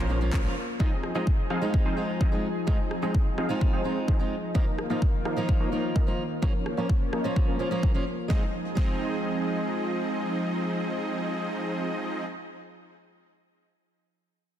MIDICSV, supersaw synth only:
0, 0, Header, 1, 2, 480
1, 0, Start_track
1, 0, Key_signature, -4, "minor"
1, 0, Tempo, 468750
1, 820, Time_signature, 4, 2, 24, 8
1, 14947, End_track
2, 0, Start_track
2, 0, Title_t, "Supersaw synth"
2, 0, Program_c, 0, 81
2, 0, Note_on_c, 0, 53, 77
2, 0, Note_on_c, 0, 58, 68
2, 0, Note_on_c, 0, 61, 69
2, 0, Note_on_c, 0, 70, 69
2, 0, Note_on_c, 0, 72, 83
2, 237, Note_off_c, 0, 53, 0
2, 237, Note_off_c, 0, 58, 0
2, 237, Note_off_c, 0, 61, 0
2, 237, Note_off_c, 0, 70, 0
2, 237, Note_off_c, 0, 72, 0
2, 341, Note_on_c, 0, 53, 93
2, 341, Note_on_c, 0, 58, 87
2, 341, Note_on_c, 0, 61, 88
2, 341, Note_on_c, 0, 70, 88
2, 341, Note_on_c, 0, 73, 99
2, 501, Note_off_c, 0, 53, 0
2, 501, Note_off_c, 0, 58, 0
2, 501, Note_off_c, 0, 61, 0
2, 501, Note_off_c, 0, 70, 0
2, 501, Note_off_c, 0, 73, 0
2, 821, Note_on_c, 0, 53, 81
2, 821, Note_on_c, 0, 60, 74
2, 821, Note_on_c, 0, 63, 75
2, 821, Note_on_c, 0, 68, 73
2, 821, Note_on_c, 0, 75, 86
2, 1151, Note_off_c, 0, 53, 0
2, 1151, Note_off_c, 0, 75, 0
2, 1152, Note_off_c, 0, 60, 0
2, 1152, Note_off_c, 0, 63, 0
2, 1152, Note_off_c, 0, 68, 0
2, 1181, Note_on_c, 0, 53, 74
2, 1181, Note_on_c, 0, 60, 68
2, 1181, Note_on_c, 0, 63, 68
2, 1181, Note_on_c, 0, 68, 69
2, 1181, Note_on_c, 0, 75, 84
2, 1512, Note_off_c, 0, 53, 0
2, 1512, Note_off_c, 0, 60, 0
2, 1512, Note_off_c, 0, 63, 0
2, 1512, Note_off_c, 0, 68, 0
2, 1512, Note_off_c, 0, 75, 0
2, 1541, Note_on_c, 0, 53, 77
2, 1541, Note_on_c, 0, 68, 70
2, 1541, Note_on_c, 0, 77, 83
2, 1542, Note_on_c, 0, 60, 69
2, 1542, Note_on_c, 0, 63, 70
2, 1872, Note_off_c, 0, 53, 0
2, 1872, Note_off_c, 0, 60, 0
2, 1872, Note_off_c, 0, 63, 0
2, 1872, Note_off_c, 0, 68, 0
2, 1872, Note_off_c, 0, 77, 0
2, 1901, Note_on_c, 0, 53, 76
2, 1901, Note_on_c, 0, 60, 69
2, 1901, Note_on_c, 0, 63, 71
2, 1901, Note_on_c, 0, 68, 68
2, 1901, Note_on_c, 0, 72, 87
2, 2157, Note_off_c, 0, 53, 0
2, 2157, Note_off_c, 0, 60, 0
2, 2157, Note_off_c, 0, 63, 0
2, 2157, Note_off_c, 0, 68, 0
2, 2157, Note_off_c, 0, 72, 0
2, 2261, Note_on_c, 0, 53, 92
2, 2261, Note_on_c, 0, 60, 84
2, 2261, Note_on_c, 0, 63, 84
2, 2261, Note_on_c, 0, 75, 102
2, 2262, Note_on_c, 0, 68, 85
2, 2421, Note_off_c, 0, 53, 0
2, 2421, Note_off_c, 0, 60, 0
2, 2421, Note_off_c, 0, 63, 0
2, 2421, Note_off_c, 0, 68, 0
2, 2421, Note_off_c, 0, 75, 0
2, 2741, Note_on_c, 0, 53, 79
2, 2741, Note_on_c, 0, 60, 74
2, 2741, Note_on_c, 0, 63, 71
2, 2741, Note_on_c, 0, 68, 73
2, 2741, Note_on_c, 0, 75, 86
2, 3072, Note_off_c, 0, 53, 0
2, 3072, Note_off_c, 0, 60, 0
2, 3072, Note_off_c, 0, 63, 0
2, 3072, Note_off_c, 0, 68, 0
2, 3072, Note_off_c, 0, 75, 0
2, 3100, Note_on_c, 0, 75, 84
2, 3101, Note_on_c, 0, 53, 75
2, 3101, Note_on_c, 0, 60, 69
2, 3101, Note_on_c, 0, 63, 68
2, 3101, Note_on_c, 0, 68, 66
2, 3431, Note_off_c, 0, 75, 0
2, 3432, Note_off_c, 0, 53, 0
2, 3432, Note_off_c, 0, 60, 0
2, 3432, Note_off_c, 0, 63, 0
2, 3432, Note_off_c, 0, 68, 0
2, 3461, Note_on_c, 0, 53, 78
2, 3461, Note_on_c, 0, 60, 73
2, 3461, Note_on_c, 0, 63, 71
2, 3461, Note_on_c, 0, 68, 68
2, 3461, Note_on_c, 0, 77, 85
2, 3791, Note_off_c, 0, 63, 0
2, 3792, Note_off_c, 0, 53, 0
2, 3792, Note_off_c, 0, 60, 0
2, 3792, Note_off_c, 0, 68, 0
2, 3792, Note_off_c, 0, 77, 0
2, 3820, Note_on_c, 0, 53, 75
2, 3820, Note_on_c, 0, 60, 71
2, 3820, Note_on_c, 0, 63, 68
2, 3820, Note_on_c, 0, 68, 71
2, 3820, Note_on_c, 0, 72, 85
2, 4077, Note_off_c, 0, 53, 0
2, 4077, Note_off_c, 0, 60, 0
2, 4077, Note_off_c, 0, 63, 0
2, 4077, Note_off_c, 0, 68, 0
2, 4077, Note_off_c, 0, 72, 0
2, 4179, Note_on_c, 0, 53, 90
2, 4179, Note_on_c, 0, 60, 86
2, 4180, Note_on_c, 0, 63, 86
2, 4180, Note_on_c, 0, 68, 86
2, 4180, Note_on_c, 0, 75, 103
2, 4340, Note_off_c, 0, 53, 0
2, 4340, Note_off_c, 0, 60, 0
2, 4340, Note_off_c, 0, 63, 0
2, 4340, Note_off_c, 0, 68, 0
2, 4340, Note_off_c, 0, 75, 0
2, 4659, Note_on_c, 0, 53, 77
2, 4659, Note_on_c, 0, 63, 74
2, 4659, Note_on_c, 0, 70, 74
2, 4660, Note_on_c, 0, 58, 74
2, 4660, Note_on_c, 0, 75, 91
2, 4991, Note_off_c, 0, 53, 0
2, 4991, Note_off_c, 0, 58, 0
2, 4991, Note_off_c, 0, 63, 0
2, 4991, Note_off_c, 0, 70, 0
2, 4991, Note_off_c, 0, 75, 0
2, 5020, Note_on_c, 0, 53, 77
2, 5020, Note_on_c, 0, 58, 70
2, 5020, Note_on_c, 0, 63, 68
2, 5020, Note_on_c, 0, 70, 70
2, 5020, Note_on_c, 0, 75, 82
2, 5351, Note_off_c, 0, 53, 0
2, 5351, Note_off_c, 0, 58, 0
2, 5351, Note_off_c, 0, 63, 0
2, 5351, Note_off_c, 0, 70, 0
2, 5351, Note_off_c, 0, 75, 0
2, 5379, Note_on_c, 0, 53, 77
2, 5379, Note_on_c, 0, 58, 69
2, 5379, Note_on_c, 0, 70, 71
2, 5379, Note_on_c, 0, 77, 84
2, 5380, Note_on_c, 0, 63, 71
2, 5711, Note_off_c, 0, 53, 0
2, 5711, Note_off_c, 0, 58, 0
2, 5711, Note_off_c, 0, 63, 0
2, 5711, Note_off_c, 0, 70, 0
2, 5711, Note_off_c, 0, 77, 0
2, 5739, Note_on_c, 0, 53, 74
2, 5739, Note_on_c, 0, 73, 80
2, 5740, Note_on_c, 0, 58, 70
2, 5740, Note_on_c, 0, 63, 67
2, 5740, Note_on_c, 0, 70, 69
2, 5996, Note_off_c, 0, 53, 0
2, 5996, Note_off_c, 0, 73, 0
2, 5997, Note_off_c, 0, 58, 0
2, 5997, Note_off_c, 0, 63, 0
2, 5997, Note_off_c, 0, 70, 0
2, 6099, Note_on_c, 0, 58, 84
2, 6099, Note_on_c, 0, 63, 85
2, 6099, Note_on_c, 0, 70, 85
2, 6099, Note_on_c, 0, 75, 100
2, 6100, Note_on_c, 0, 53, 91
2, 6260, Note_off_c, 0, 53, 0
2, 6260, Note_off_c, 0, 58, 0
2, 6260, Note_off_c, 0, 63, 0
2, 6260, Note_off_c, 0, 70, 0
2, 6260, Note_off_c, 0, 75, 0
2, 6579, Note_on_c, 0, 58, 74
2, 6579, Note_on_c, 0, 73, 90
2, 6580, Note_on_c, 0, 53, 78
2, 6580, Note_on_c, 0, 61, 72
2, 6580, Note_on_c, 0, 70, 71
2, 6911, Note_off_c, 0, 53, 0
2, 6911, Note_off_c, 0, 58, 0
2, 6911, Note_off_c, 0, 61, 0
2, 6911, Note_off_c, 0, 70, 0
2, 6911, Note_off_c, 0, 73, 0
2, 6940, Note_on_c, 0, 53, 75
2, 6940, Note_on_c, 0, 58, 69
2, 6940, Note_on_c, 0, 61, 68
2, 6940, Note_on_c, 0, 70, 68
2, 6940, Note_on_c, 0, 73, 83
2, 7271, Note_off_c, 0, 53, 0
2, 7271, Note_off_c, 0, 58, 0
2, 7271, Note_off_c, 0, 61, 0
2, 7271, Note_off_c, 0, 70, 0
2, 7271, Note_off_c, 0, 73, 0
2, 7299, Note_on_c, 0, 58, 70
2, 7299, Note_on_c, 0, 70, 72
2, 7299, Note_on_c, 0, 75, 83
2, 7300, Note_on_c, 0, 53, 78
2, 7300, Note_on_c, 0, 61, 71
2, 7631, Note_off_c, 0, 53, 0
2, 7631, Note_off_c, 0, 58, 0
2, 7631, Note_off_c, 0, 61, 0
2, 7631, Note_off_c, 0, 70, 0
2, 7631, Note_off_c, 0, 75, 0
2, 7660, Note_on_c, 0, 53, 76
2, 7660, Note_on_c, 0, 58, 69
2, 7660, Note_on_c, 0, 61, 67
2, 7660, Note_on_c, 0, 70, 70
2, 7660, Note_on_c, 0, 72, 81
2, 7917, Note_off_c, 0, 53, 0
2, 7917, Note_off_c, 0, 58, 0
2, 7917, Note_off_c, 0, 61, 0
2, 7917, Note_off_c, 0, 70, 0
2, 7917, Note_off_c, 0, 72, 0
2, 8020, Note_on_c, 0, 53, 91
2, 8020, Note_on_c, 0, 58, 87
2, 8020, Note_on_c, 0, 61, 86
2, 8020, Note_on_c, 0, 70, 86
2, 8020, Note_on_c, 0, 73, 103
2, 8180, Note_off_c, 0, 53, 0
2, 8180, Note_off_c, 0, 58, 0
2, 8180, Note_off_c, 0, 61, 0
2, 8180, Note_off_c, 0, 70, 0
2, 8180, Note_off_c, 0, 73, 0
2, 8500, Note_on_c, 0, 53, 87
2, 8500, Note_on_c, 0, 60, 79
2, 8500, Note_on_c, 0, 63, 79
2, 8500, Note_on_c, 0, 68, 77
2, 8500, Note_on_c, 0, 75, 96
2, 8634, Note_off_c, 0, 53, 0
2, 8634, Note_off_c, 0, 60, 0
2, 8634, Note_off_c, 0, 63, 0
2, 8634, Note_off_c, 0, 68, 0
2, 8634, Note_off_c, 0, 75, 0
2, 8979, Note_on_c, 0, 60, 76
2, 8979, Note_on_c, 0, 63, 75
2, 8979, Note_on_c, 0, 75, 92
2, 8980, Note_on_c, 0, 53, 83
2, 8980, Note_on_c, 0, 68, 74
2, 12538, Note_off_c, 0, 53, 0
2, 12538, Note_off_c, 0, 60, 0
2, 12538, Note_off_c, 0, 63, 0
2, 12538, Note_off_c, 0, 68, 0
2, 12538, Note_off_c, 0, 75, 0
2, 14947, End_track
0, 0, End_of_file